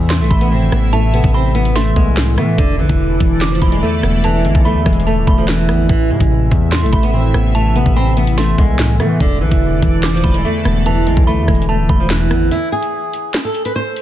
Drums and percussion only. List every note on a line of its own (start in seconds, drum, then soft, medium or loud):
0.10 snare loud
0.10 clap loud
0.10 closed hi-hat medium
0.17 closed hi-hat medium
0.24 closed hi-hat medium
0.31 kick loud
0.31 closed hi-hat medium
0.41 closed hi-hat medium
0.72 cross-stick medium
0.72 closed hi-hat medium
0.93 closed hi-hat medium
1.14 closed hi-hat medium
1.24 kick medium
1.55 closed hi-hat medium
1.65 closed hi-hat medium
1.76 snare medium
1.96 kick loud
2.17 snare loud
2.17 clap medium
2.17 closed hi-hat medium
2.38 cross-stick loud
2.38 closed hi-hat medium
2.58 kick loud
2.58 closed hi-hat medium
2.89 kick medium
2.89 closed hi-hat medium
3.20 kick loud
3.20 closed hi-hat medium
3.41 snare loud
3.41 clap loud
3.41 closed hi-hat medium
3.48 closed hi-hat medium
3.55 closed hi-hat medium
3.62 kick loud
3.62 closed hi-hat medium
3.72 closed hi-hat medium
4.03 cross-stick loud
4.03 closed hi-hat medium
4.24 closed hi-hat medium
4.45 closed hi-hat medium
4.55 kick medium
4.86 kick loud
4.86 cross-stick loud
4.86 closed hi-hat soft
4.93 closed hi-hat medium
5.00 closed hi-hat medium
5.27 kick loud
5.48 snare loud
5.48 clap medium
5.48 closed hi-hat medium
5.69 cross-stick medium
5.69 closed hi-hat medium
5.89 kick loud
5.89 closed hi-hat medium
6.20 kick medium
6.20 closed hi-hat medium
6.51 kick loud
6.51 closed hi-hat medium
6.72 snare loud
6.72 clap loud
6.72 closed hi-hat medium
6.79 closed hi-hat medium
6.86 closed hi-hat medium
6.93 kick loud
6.93 closed hi-hat medium
7.03 closed hi-hat medium
7.34 cross-stick loud
7.34 closed hi-hat medium
7.55 closed hi-hat medium
7.76 closed hi-hat medium
7.86 kick medium
8.17 closed hi-hat medium
8.27 closed hi-hat medium
8.38 snare medium
8.58 kick loud
8.79 snare loud
8.79 clap medium
8.79 closed hi-hat medium
9.00 cross-stick medium
9.00 closed hi-hat medium
9.20 kick loud
9.20 closed hi-hat medium
9.52 kick medium
9.52 closed hi-hat medium
9.82 kick loud
9.82 closed hi-hat medium
10.03 snare loud
10.03 clap loud
10.03 closed hi-hat medium
10.10 closed hi-hat medium
10.17 closed hi-hat medium
10.24 kick loud
10.24 closed hi-hat medium
10.34 closed hi-hat medium
10.65 cross-stick loud
10.65 closed hi-hat medium
10.86 closed hi-hat medium
11.07 closed hi-hat medium
11.17 kick medium
11.48 kick loud
11.48 cross-stick loud
11.48 closed hi-hat soft
11.55 closed hi-hat medium
11.62 closed hi-hat medium
11.89 kick loud
12.10 snare loud
12.10 clap medium
12.10 closed hi-hat medium
12.31 cross-stick medium
12.31 closed hi-hat medium
12.51 closed hi-hat medium
12.83 closed hi-hat medium
13.13 closed hi-hat medium
13.34 snare loud
13.34 clap loud
13.34 closed hi-hat medium
13.55 closed hi-hat medium
13.65 closed hi-hat medium
13.96 closed hi-hat medium